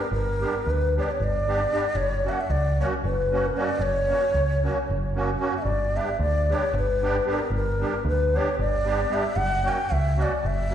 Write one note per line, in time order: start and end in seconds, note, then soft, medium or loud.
0.00 0.11 A#4 medium
0.11 0.44 G1 medium
0.11 0.72 A#4 medium
0.40 0.54 G3 medium
0.40 0.55 B3 soft
0.40 0.55 D4 soft
0.40 0.55 G4 medium
0.66 0.99 D2 medium
0.71 0.97 B4 loud
0.96 1.09 G3 medium
0.96 1.09 B3 soft
0.96 1.10 D4 medium
0.96 1.10 G4 medium
0.96 1.05 C#5 medium
1.03 1.13 D5 medium
1.11 1.25 C#5 medium
1.20 1.65 G1 loud
1.20 1.97 D5 loud
1.47 1.60 G3 medium
1.47 1.61 B3 medium
1.47 1.61 D4 medium
1.47 1.61 G4 medium
1.71 1.85 G3 medium
1.71 1.85 B3 medium
1.71 1.85 D4 medium
1.71 1.85 G4 medium
1.95 2.28 F#1 loud
1.95 2.30 C#5 loud
2.24 2.38 F#3 medium
2.24 2.39 A#3 soft
2.24 2.39 C#4 soft
2.24 2.39 F#4 medium
2.29 2.32 E5 medium
2.29 2.42 F#5 medium
2.41 2.52 E5 medium
2.50 2.82 C#2 medium
2.50 2.80 D5 loud
2.79 2.93 F#3 medium
2.79 2.94 A#3 medium
2.79 2.94 C#4 medium
2.79 2.94 F#4 medium
2.79 2.87 C#5 medium
3.04 3.49 F#1 loud
3.04 3.47 B4 medium
3.31 3.45 F#3 medium
3.31 3.46 A#3 medium
3.31 3.46 C#4 medium
3.31 3.46 F#4 medium
3.45 3.59 A#4 medium
3.55 3.69 F#3 medium
3.55 3.69 A#3 medium
3.55 3.70 C#4 medium
3.55 3.70 F#4 medium
3.55 3.84 D5 medium
3.79 4.12 F#1 loud
3.79 5.18 C#5 loud
4.08 4.23 F#3 soft
4.08 4.23 A#3 soft
4.08 4.23 C#4 soft
4.08 4.24 F#4 medium
4.34 4.67 C#2 medium
4.62 4.77 F#3 medium
4.62 4.78 A#3 soft
4.62 4.78 C#4 medium
4.62 4.78 F#4 medium
4.90 5.35 F#1 loud
5.15 5.30 F#3 medium
5.15 5.30 A#3 medium
5.15 5.30 C#4 medium
5.15 5.30 F#4 medium
5.39 5.54 F#3 medium
5.39 5.54 A#3 medium
5.39 5.54 C#4 medium
5.39 5.54 F#4 medium
5.57 5.64 E5 medium
5.62 5.98 G1 loud
5.62 5.98 D5 medium
5.94 6.08 G3 medium
5.94 6.09 B3 soft
5.94 6.09 D4 soft
5.94 6.10 G4 soft
5.94 6.21 E5 medium
6.19 6.52 D2 medium
6.19 6.54 D5 loud
6.49 6.63 G3 medium
6.49 6.64 B3 medium
6.49 6.64 D4 medium
6.49 6.64 G4 medium
6.49 6.76 C#5 medium
6.73 7.19 G1 loud
6.78 7.24 B4 medium
7.02 7.16 G3 medium
7.02 7.16 B3 medium
7.02 7.16 D4 medium
7.02 7.16 G4 medium
7.25 7.39 G3 medium
7.25 7.40 B3 medium
7.25 7.40 D4 medium
7.25 7.40 G4 medium
7.31 7.51 A#4 medium
7.50 7.83 G1 loud
7.56 8.04 A#4 medium
7.80 7.94 G3 soft
7.80 7.94 B3 soft
7.80 7.94 D4 medium
7.80 7.95 G4 medium
8.05 8.37 D2 medium
8.05 8.38 B4 loud
8.34 8.48 G3 medium
8.34 8.48 B3 medium
8.34 8.49 D4 medium
8.34 8.49 G4 medium
8.34 8.59 C#5 medium
8.59 9.04 G1 loud
8.59 9.15 D5 loud
8.84 8.99 G3 medium
8.84 9.00 B3 medium
8.84 9.00 D4 medium
8.84 9.00 G4 medium
9.09 9.24 G3 medium
9.09 9.24 B3 medium
9.09 9.24 D4 medium
9.09 9.24 G4 medium
9.13 9.38 E5 loud
9.36 9.68 F#1 loud
9.36 9.69 F#5 loud
9.62 9.77 F#3 medium
9.62 9.78 A#3 medium
9.62 9.78 C#4 soft
9.62 9.78 F#4 medium
9.68 9.94 G5 loud
9.92 10.24 C#2 medium
9.92 10.23 E5 loud
10.16 10.32 F#3 medium
10.16 10.32 A#3 medium
10.16 10.32 C#4 medium
10.16 10.32 F#4 medium
10.22 10.48 D5 medium
10.44 10.74 F#1 loud
10.44 10.74 E5 loud
10.69 10.74 F#3 medium
10.69 10.74 A#3 medium
10.69 10.74 C#4 medium
10.69 10.74 F#4 medium